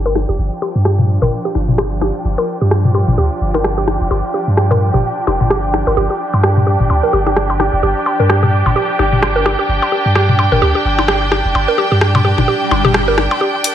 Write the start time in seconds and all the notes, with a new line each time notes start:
Already playing: G1 F3 D4 F4 G4 G5, sub drop
0.06 A#4, percussion blips
0.15 cross-stick, percussion blips
0.29 F1 G4
0.39 G1
0.62 G4, percussion blips
0.75 G2
0.85 G4, cross-stick
0.99 mid tom
1.22 G1 A#4, mid tom, percussion blips
1.45 G4
1.55 G1, percussion blips
1.68 mid tom
1.78 G4, cross-stick, percussion blips
2.01 G4, cross-stick, percussion blips
2.25 G1
2.38 A#4, percussion blips
2.61 G2 G4
2.71 cross-stick
2.85 mid tom
2.94 G4, percussion blips
3.08 G1, mid tom
3.18 D2 G4
3.41 G1
3.54 A#4, percussion blips
3.64 cross-stick
3.78 G4
3.87 cross-stick, percussion blips
4.01 F1
4.11 G1 G4, percussion blips
4.34 G4
4.48 G2
4.57 cross-stick
4.71 A#4, mid tom, percussion blips
4.94 G1 G4, mid tom
5.27 F1 G4, percussion blips
5.41 G1, mid tom
5.50 G4, cross-stick
5.74 cross-stick, percussion blips
5.87 G1 A#4, percussion blips
5.97 G1 G4
6.10 G4
6.33 G2, percussion blips
6.43 G4, cross-stick
6.57 mid tom
6.67 G4
6.80 G1, mid tom
6.90 D2, percussion blips
7.03 A#4
7.13 G1 G4
7.27 G4, percussion blips
7.36 cross-stick
7.50 percussion blips
7.60 G4, cross-stick, percussion blips
7.73 F1
7.83 G1 G4
8.06 percussion blips
8.20 G2 A#4
8.29 G4, cross-stick
8.43 G4, mid tom
8.66 G1, mid tom, percussion blips
8.76 G4
8.99 G1 G4, percussion blips
9.13 mid tom
9.22 cross-stick, percussion blips
9.36 A#4
9.46 G4, cross-stick, percussion blips
9.59 G4
9.69 G1
9.82 percussion blips
9.92 G4
10.06 G2
10.15 G4, cross-stick
10.29 mid tom
10.39 percussion blips
10.52 G1 A#4, mid tom
10.62 D2 G4
10.75 G4
10.85 G1
10.99 percussion blips
11.08 G4, cross-stick
11.32 G4, cross-stick, percussion blips
11.45 F1
11.55 G1, percussion blips
11.68 A#4
11.78 G4
11.92 G2 G4
12.01 cross-stick
12.15 mid tom, percussion blips
12.25 G4
12.38 G1, mid tom, percussion blips
12.48 G4, swell
12.71 G1, percussion blips
12.85 G4, mid tom
12.94 cross-stick
13.08 A#4
13.18 cross-stick, percussion blips
13.31 percussion blips
13.41 G4, riser
13.64 open hi-hat